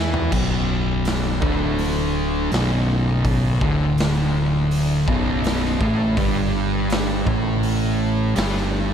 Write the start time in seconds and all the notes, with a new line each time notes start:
Already playing: E2 E3 E4
0.14 floor tom
0.32 B0 B1 B2, kick, crash
1.05 snare, open hi-hat
1.42 D1 D2 D3, kick
1.79 open hi-hat
2.52 B0 B1 B2, snare, open hi-hat
3.25 kick, open hi-hat
3.61 D1 D2 D3, kick
3.98 snare, open hi-hat
4.71 open hi-hat
5.07 B0 B1 B2, kick
5.44 snare, open hi-hat
5.65 snare
5.80 A1 A2 A3, kick
6.17 G1 G2 G3, kick, open hi-hat
6.90 snare, open hi-hat
7.27 A1 A2 A3, kick
7.63 open hi-hat
8.36 G1 G2 G3, snare, open hi-hat
8.57 snare